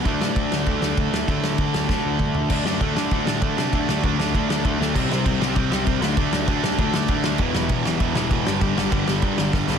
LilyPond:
<<
  \new Staff \with { instrumentName = "Distorted electric guitar" } { \clef bass \time 4/4 \key d \mixolydian \tempo 4 = 196 <d a d'>2 <d a d'>2 | <d a d'>2 <d a d'>2 | <d a d'>8 <d a d'>8 <d a d'>8 <d a d'>8 <d a d'>8 <d a d'>8 <d a d'>8 <d a d'>8 | <d a d'>8 <d a d'>8 <d a d'>8 <d a d'>8 <d a d'>8 <d a d'>8 <d a d'>8 <d a d'>8 |
<c g c'>8 <c g c'>8 <c g c'>8 <c g c'>8 <c g c'>8 <c g c'>8 <c g c'>8 <d a d'>8 | <d a d'>8 <d a d'>8 <d a d'>8 <d a d'>8 <d a d'>8 <d a d'>8 <d a d'>8 <d a d'>8 | <e, b, e>8 <e, b, e>8 <e, b, e>8 <e, b, e>8 <e, b, e>8 <e, b, e>8 <e, b, e>8 <g, d g>8 | <g, d g>8 <g, d g>8 <g, d g>8 <g, d g>8 <g, d g>8 <g, d g>8 <g, d g>8 <g, d g>8 | }
  \new Staff \with { instrumentName = "Distorted electric guitar" } { \clef bass \time 4/4 \key d \mixolydian <d a d'>1 | <d a d'>1 | <d a d'>8 <d a d'>8 <d a d'>8 <d a d'>8 <d a d'>8 <d a d'>8 <d a d'>8 <d a d'>8 | <d a d'>8 <d a d'>8 <d a d'>8 <d a d'>8 <d a d'>8 <d a d'>8 <d a d'>8 <d a d'>8 |
<c g c'>8 <c g c'>8 <c g c'>8 <c g c'>8 <c g c'>8 <c g c'>8 <c g c'>8 <d a d'>8 | <d a d'>8 <d a d'>8 <d a d'>8 <d a d'>8 <d a d'>8 <d a d'>8 <d a d'>8 <d a d'>8 | <e, b, e>8 <e, b, e>8 <e, b, e>8 <e, b, e>8 <e, b, e>8 <e, b, e>8 <e, b, e>8 <g, d g>8 | <g, d g>8 <g, d g>8 <g, d g>8 <g, d g>8 <g, d g>8 <g, d g>8 <g, d g>8 <g, d g>8 | }
  \new Staff \with { instrumentName = "Picked electric bass" } { \clef bass \time 4/4 \key d \mixolydian d,8 a,8 d,8 d,8 d,8 d,8 d,8 d,8 | d,8 a,8 d,8 d,8 d,8 d,8 d,8 d,8 | d,8 fis,8 d,8 d8 d,8 a,8 d8 c8 | d,8 d,8 d,4 d,8 d,8 d,8 d,8 |
c,8 c,8 c,8 c,8 c,8 c,8 c,8 d,8 | d,8 d,8 d,8 d,8 d,8 d,8 d,8 d,8 | e,,8 e,,8 e,,8 e,,8 e,,8 e,,8 e,,8 g,,8 | g,,8 g,,8 g,,8 g,,8 g,,8 g,,8 g,,8 b,,8 | }
  \new DrumStaff \with { instrumentName = "Drums" } \drummode { \time 4/4 <cymc bd>8 sn8 <cymc bd>8 sn8 <cymc bd>8 sn8 <cymc bd>8 sn8 | <cymc bd>8 sn8 <cymc bd>8 sn8 <bd sn>4 <bd toml>8 tomfh8 | <cymc bd>8 sn8 <bd cymr>8 sn8 <bd cymr>8 sn8 <bd cymr>8 sn8 | <bd cymr>8 sn8 <bd cymr>8 sn8 <bd cymr>8 sn8 <bd cymr>8 sn8 |
<cymc bd>8 sn8 <cymc bd>8 sn8 <cymc bd>8 sn8 <cymc bd>8 sn8 | <cymc bd>8 sn8 <cymc bd>8 sn8 <cymc bd>8 sn8 <cymc bd>8 sn8 | <cymc bd>8 sn8 <cymc bd>8 sn8 <cymc bd>8 sn8 <cymc bd>8 sn8 | <cymc bd>8 sn8 <cymc bd>8 sn8 <cymc bd>8 sn8 <bd sn>8 sn8 | }
>>